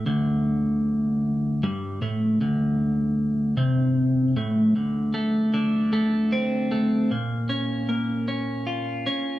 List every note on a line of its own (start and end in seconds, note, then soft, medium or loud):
0.06 1.61 D2 loud
1.63 2.00 G2 loud
2.02 2.39 A2 loud
2.41 3.57 D2 loud
3.57 4.34 C3 medium
4.37 4.74 A2 loud
4.76 6.71 D2 medium
5.14 5.92 A3 medium
5.54 7.10 D3 medium
5.93 6.70 A3 medium
6.32 7.10 C4 medium
6.71 7.10 A3 medium
7.11 9.07 A#2 medium
7.49 8.27 C#4 medium
7.89 9.39 A#3 medium
8.28 9.05 C#4 medium
8.67 9.39 F4 medium
9.07 9.39 C#4 medium